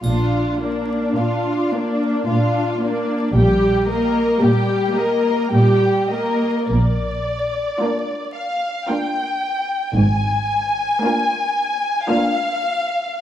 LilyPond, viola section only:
\new Staff \with { instrumentName = "Viola section" } { \time 3/4 \key bes \major \tempo 4 = 55 d'8 bes8 d'8 bes8 d'8 bes8 | g8 bes8 g8 bes8 g8 bes8 | r4 <bes d'>4 <bes d'>4 | r4 <bes d'>4 <bes d'>4 | }